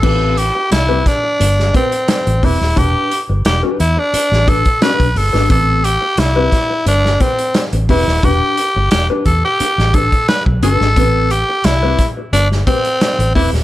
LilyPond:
<<
  \new Staff \with { instrumentName = "Clean electric guitar" } { \time 4/4 \key a \minor \tempo 4 = 88 <c' g' b'>8 r8. <c' g' b'>16 r4 <c' g' b'>16 r8. <c' g' b'>16 r16 | <d' g' b'>8 r8. <d' g' b'>16 r4 <d' g' b'>16 r16 <d' g' b'>16 r8 <d' g' b'>16 | <c' g' b'>8 r8. <c' g' b'>16 r4 <c' g' b'>16 r8. <c' g' b'>16 r16 | <d' g' b'>8 r8. <d' g' b'>16 r4 <d' g' b'>16 r8. <d' g' b'>16 r16 |
<c' g' b'>8 r8. <c' g' b'>16 r4 <c' g' b'>16 r8. <c' g' b'>16 r16 | }
  \new Staff \with { instrumentName = "Tenor saxophone" } { \time 4/4 \key a \minor a'8 g'8 e'8 d'4 c'4 e'8 | g'8 r8 g'8 e'16 d'8. a'8 b'8 a'8 | a'8 g'8 e'4 d'8 c'8 r8 e'8 | g'4 g'8 a'16 g'8. a'8 b'8 a'8~ |
a'8 g'8 e'8 r8 d'8 c'4 e'8 | }
  \new Staff \with { instrumentName = "Fingered electric bass" } { \clef bass \time 4/4 \key a \minor a,,8. r16 c,8 r8 g,,8 r8. a,,16 e,,16 dis,,16 | e,,16 r8 g,,16 e,,16 r16 e,16 r8 a,,8 r8 b,,16 g,,16 gis,,16 | a,,8. r16 c,8 r8 g,,8 r8. a,,16 e,,16 dis,,16 | e,,16 r8 g,,16 e,,16 r16 e,16 r8 a,,8 r8 b,,16 g,,16 gis,,16 |
a,,8. r16 c,8 r8 g,,8 r8. a,,16 e,,16 dis,,16 | }
  \new DrumStaff \with { instrumentName = "Drums" } \drummode { \time 4/4 <cymc bd>8 hh8 <hh sn>8 <hh bd sn>8 hh16 sn16 <hh bd>16 hh16 <hh sn>16 hh16 <hho bd>16 sn16 | <hh bd>8 hh8 <hh sn>8 hh8 hh16 sn16 <hh bd>16 <hh bd>16 <hh sn>16 <hh bd>16 hho16 sn16 | <hh bd>8 hh8 <hh sn>8 <hh bd sn>8 hh16 sn16 <hh bd>16 hh16 <hh sn>16 hh16 <hho bd>16 sn16 | <hh bd>8 hh8 <hh sn>8 <hh bd>8 hh16 sn16 <hh bd>16 <hh bd>16 <hh sn>16 bd16 hh16 sn16 |
<hh bd>8 hh8 <hh sn>8 <hh bd sn>8 hh16 sn16 <hh bd>16 hh16 <hh sn>16 hh16 <hho bd>16 sn16 | }
>>